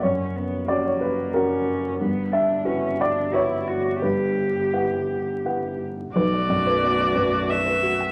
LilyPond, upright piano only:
\new Staff \with { instrumentName = "Upright piano" } { \time 3/4 \key b \minor \tempo 4 = 90 << { cis''4 d''16 cis''16 b'8 ais'4 | r8 e''4 d''8 cis''4 | b'2~ b'8 r8 | r2. | } \\ { fis,4 <cis' fis' cis''>4 <cis' fis'>4 | g,4 <e' fis' b'>4 <e' fis' b'>4 | g,4 <e' b' fis''>4 <e' b' fis''>4 | b,,8 fis,8 b8 fis,8 b8 fis'8 | } >> }